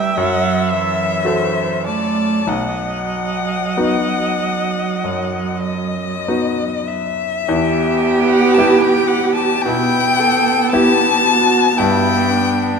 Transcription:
0.00 0.20 C2 medium
0.00 0.17 G3 medium
0.00 0.14 G4 soft
0.00 0.14 B4 medium
0.00 1.27 E5 medium
0.00 0.19 G5 medium
0.17 1.23 F#2 medium
0.17 0.74 F#3 medium
0.17 0.73 F#5 medium
0.71 1.89 E3 medium
0.71 1.86 E5 medium
1.25 2.44 F#4 soft
1.25 2.45 A4 soft
1.25 1.86 C5 medium
1.87 2.53 A3 medium
1.87 2.50 D5 medium
1.87 2.50 A5 medium
2.47 3.72 B1 soft
2.47 6.90 D#5 medium
2.47 5.62 F#5 medium
2.51 6.91 F#3 medium
3.77 5.01 B3 soft
3.77 5.01 D#4 soft
3.77 5.01 F#4 soft
5.04 7.02 F#2 soft
5.63 6.89 D#5 medium
6.28 7.45 B3 soft
6.28 7.45 D#4 soft
6.28 7.46 F#4 soft
6.88 8.29 E5 medium
7.48 8.54 E2 medium
7.48 9.61 B3 medium
7.48 9.68 G4 medium
8.28 8.56 F#5 medium
8.54 9.61 B3 medium
8.54 8.83 A5 medium
8.58 9.62 E4 soft
8.58 9.62 G4 medium
8.81 9.09 G5 medium
9.08 9.34 F#5 medium
9.35 9.63 A5 medium
9.62 11.36 B2 medium
9.62 11.73 B3 medium
9.62 10.71 G5 loud
9.66 10.21 E4 medium
10.19 10.75 A4 medium
10.70 11.74 B3 soft
10.70 11.74 E4 medium
10.70 11.28 G4 medium
10.70 11.74 G4 medium
10.70 11.79 A5 loud
11.26 11.78 F#4 medium
11.77 12.78 G2 medium
11.77 12.77 B3 medium
11.77 12.31 E4 medium
11.77 12.79 G5 loud
12.30 12.79 D4 medium

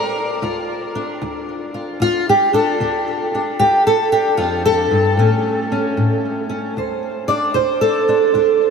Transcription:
0.00 0.41 G3 soft
0.00 0.42 A#4 loud
0.42 1.16 D2 medium
0.42 1.73 F4 medium
0.95 2.52 D4 soft
1.22 1.95 D2 medium
1.74 2.01 F4 soft
2.00 2.74 D2 medium
2.00 2.27 F4 loud
2.29 2.54 G4 loud
2.53 2.80 D4 medium
2.53 3.59 A4 medium
2.80 3.54 D2 medium
2.80 3.32 D4 soft
3.35 3.57 D4 medium
3.59 4.33 D2 medium
3.59 3.85 G4 loud
3.87 4.12 A4 loud
4.12 5.15 D4 soft
4.12 4.37 G4 medium
4.37 4.90 F2 medium
4.37 4.64 F4 medium
4.65 6.76 A4 loud
4.91 5.18 G2 medium
5.17 5.91 A2 medium
5.17 6.74 A3 medium
5.17 5.70 C#4 medium
5.72 6.48 C#4 medium
5.97 6.71 A2 medium
6.49 6.73 C#4 soft
6.77 7.50 D2 medium
6.77 7.28 C5 soft
7.28 8.08 D4 soft
7.28 7.54 D5 medium
7.54 8.30 D2 medium
7.54 8.60 C5 medium
7.81 8.70 A4 medium
8.08 8.34 D4 soft
8.34 8.70 D2 medium
8.34 8.70 D4 soft

